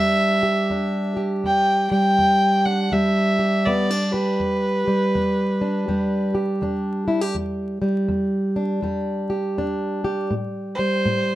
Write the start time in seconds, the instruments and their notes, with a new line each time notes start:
Already playing: steel-string acoustic guitar E2 G3 D4, fiddle E5
0.43 steel-string acoustic guitar G4
0.70 steel-string acoustic guitar E2 D4
1.17 steel-string acoustic guitar G4
1.44 steel-string acoustic guitar E2, fiddle G5
1.91 steel-string acoustic guitar G3, fiddle G5
2.19 steel-string acoustic guitar E2
2.66 steel-string acoustic guitar D4, fiddle F#5
2.92 steel-string acoustic guitar E2 G3, fiddle E5
3.39 steel-string acoustic guitar G4
3.66 steel-string acoustic guitar E2 B3, fiddle D5
3.91 steel-string acoustic guitar D4
4.12 steel-string acoustic guitar G4, fiddle B4
4.40 steel-string acoustic guitar E2
4.88 steel-string acoustic guitar G3
5.15 steel-string acoustic guitar E2
5.61 steel-string acoustic guitar D4
5.88 steel-string acoustic guitar E2 G3
6.35 steel-string acoustic guitar G4
6.62 steel-string acoustic guitar E2 D4
7.08 steel-string acoustic guitar E4
7.21 steel-string acoustic guitar G4
7.35 steel-string acoustic guitar E2
7.82 steel-string acoustic guitar G3
8.08 steel-string acoustic guitar E2
8.56 steel-string acoustic guitar D4
8.82 steel-string acoustic guitar E2 G3
9.30 steel-string acoustic guitar G4
9.58 steel-string acoustic guitar E2 D4
10.04 steel-string acoustic guitar G4
10.31 steel-string acoustic guitar A2
10.75 steel-string acoustic guitar G3, fiddle C5
11.06 steel-string acoustic guitar A2